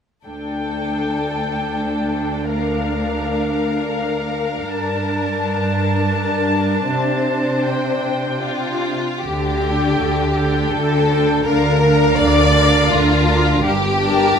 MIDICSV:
0, 0, Header, 1, 6, 480
1, 0, Start_track
1, 0, Tempo, 757576
1, 166, Time_signature, 3, 2, 24, 8
1, 1123, Tempo, 735294
1, 4963, Tempo, 792602
1, 5923, Tempo, 753769
1, 6403, Tempo, 729927
1, 9297, End_track
2, 0, Start_track
2, 0, Title_t, "Violin section"
2, 0, Program_c, 0, 48
2, 171, Note_on_c, 0, 79, 36
2, 1575, Note_off_c, 0, 79, 0
2, 1606, Note_on_c, 0, 77, 43
2, 3006, Note_off_c, 0, 77, 0
2, 3029, Note_on_c, 0, 81, 50
2, 4958, Note_on_c, 0, 79, 42
2, 4962, Note_off_c, 0, 81, 0
2, 5795, Note_off_c, 0, 79, 0
2, 6159, Note_on_c, 0, 79, 37
2, 6631, Note_off_c, 0, 79, 0
2, 6651, Note_on_c, 0, 79, 40
2, 7115, Note_off_c, 0, 79, 0
2, 7128, Note_on_c, 0, 79, 41
2, 7362, Note_off_c, 0, 79, 0
2, 7378, Note_on_c, 0, 77, 44
2, 7607, Note_off_c, 0, 77, 0
2, 7615, Note_on_c, 0, 77, 47
2, 8081, Note_off_c, 0, 77, 0
2, 8095, Note_on_c, 0, 77, 49
2, 8555, Note_off_c, 0, 77, 0
2, 8567, Note_on_c, 0, 77, 45
2, 8798, Note_off_c, 0, 77, 0
2, 9046, Note_on_c, 0, 81, 50
2, 9297, Note_off_c, 0, 81, 0
2, 9297, End_track
3, 0, Start_track
3, 0, Title_t, "Violin section"
3, 0, Program_c, 1, 48
3, 170, Note_on_c, 1, 69, 37
3, 1574, Note_off_c, 1, 69, 0
3, 1603, Note_on_c, 1, 70, 42
3, 4450, Note_off_c, 1, 70, 0
3, 4474, Note_on_c, 1, 72, 47
3, 5435, Note_off_c, 1, 72, 0
3, 5436, Note_on_c, 1, 65, 53
3, 5899, Note_off_c, 1, 65, 0
3, 5914, Note_on_c, 1, 67, 53
3, 6877, Note_off_c, 1, 67, 0
3, 6878, Note_on_c, 1, 69, 64
3, 7362, Note_off_c, 1, 69, 0
3, 7364, Note_on_c, 1, 70, 70
3, 7838, Note_off_c, 1, 70, 0
3, 7843, Note_on_c, 1, 74, 81
3, 8321, Note_off_c, 1, 74, 0
3, 8322, Note_on_c, 1, 65, 70
3, 8798, Note_off_c, 1, 65, 0
3, 8806, Note_on_c, 1, 67, 82
3, 9297, Note_off_c, 1, 67, 0
3, 9297, End_track
4, 0, Start_track
4, 0, Title_t, "Viola section"
4, 0, Program_c, 2, 48
4, 168, Note_on_c, 2, 62, 37
4, 3004, Note_off_c, 2, 62, 0
4, 3022, Note_on_c, 2, 62, 55
4, 5769, Note_off_c, 2, 62, 0
4, 6155, Note_on_c, 2, 69, 37
4, 6157, Note_on_c, 2, 62, 37
4, 6622, Note_off_c, 2, 69, 0
4, 6623, Note_off_c, 2, 62, 0
4, 6630, Note_on_c, 2, 69, 38
4, 6631, Note_on_c, 2, 62, 37
4, 7104, Note_off_c, 2, 69, 0
4, 7105, Note_off_c, 2, 62, 0
4, 7116, Note_on_c, 2, 69, 40
4, 7120, Note_on_c, 2, 62, 42
4, 7355, Note_off_c, 2, 62, 0
4, 7356, Note_off_c, 2, 69, 0
4, 7363, Note_on_c, 2, 62, 40
4, 7364, Note_on_c, 2, 70, 40
4, 7596, Note_off_c, 2, 62, 0
4, 7598, Note_off_c, 2, 70, 0
4, 7604, Note_on_c, 2, 62, 47
4, 7606, Note_on_c, 2, 70, 50
4, 8073, Note_off_c, 2, 62, 0
4, 8073, Note_off_c, 2, 70, 0
4, 8081, Note_on_c, 2, 62, 48
4, 8081, Note_on_c, 2, 70, 50
4, 8548, Note_off_c, 2, 62, 0
4, 8548, Note_off_c, 2, 70, 0
4, 8567, Note_on_c, 2, 62, 47
4, 8567, Note_on_c, 2, 70, 49
4, 8797, Note_off_c, 2, 62, 0
4, 8797, Note_off_c, 2, 70, 0
4, 9048, Note_on_c, 2, 70, 49
4, 9051, Note_on_c, 2, 62, 50
4, 9297, Note_off_c, 2, 62, 0
4, 9297, Note_off_c, 2, 70, 0
4, 9297, End_track
5, 0, Start_track
5, 0, Title_t, "Cello section"
5, 0, Program_c, 3, 48
5, 166, Note_on_c, 3, 38, 37
5, 3002, Note_off_c, 3, 38, 0
5, 3025, Note_on_c, 3, 43, 54
5, 4445, Note_off_c, 3, 43, 0
5, 4471, Note_on_c, 3, 48, 48
5, 5771, Note_off_c, 3, 48, 0
5, 5919, Note_on_c, 3, 50, 49
5, 6345, Note_off_c, 3, 50, 0
5, 6403, Note_on_c, 3, 50, 45
5, 6826, Note_off_c, 3, 50, 0
5, 6880, Note_on_c, 3, 50, 52
5, 7305, Note_off_c, 3, 50, 0
5, 7364, Note_on_c, 3, 50, 53
5, 7791, Note_off_c, 3, 50, 0
5, 7849, Note_on_c, 3, 50, 60
5, 8268, Note_off_c, 3, 50, 0
5, 8329, Note_on_c, 3, 50, 62
5, 8745, Note_off_c, 3, 50, 0
5, 8800, Note_on_c, 3, 43, 63
5, 9226, Note_off_c, 3, 43, 0
5, 9297, End_track
6, 0, Start_track
6, 0, Title_t, "Double bass section"
6, 0, Program_c, 4, 48
6, 5915, Note_on_c, 4, 38, 46
6, 6342, Note_off_c, 4, 38, 0
6, 6394, Note_on_c, 4, 38, 44
6, 6821, Note_off_c, 4, 38, 0
6, 6880, Note_on_c, 4, 38, 50
6, 7305, Note_off_c, 4, 38, 0
6, 7361, Note_on_c, 4, 38, 57
6, 7790, Note_off_c, 4, 38, 0
6, 7845, Note_on_c, 4, 38, 60
6, 8267, Note_off_c, 4, 38, 0
6, 8321, Note_on_c, 4, 38, 63
6, 8741, Note_off_c, 4, 38, 0
6, 8799, Note_on_c, 4, 31, 60
6, 9226, Note_off_c, 4, 31, 0
6, 9297, End_track
0, 0, End_of_file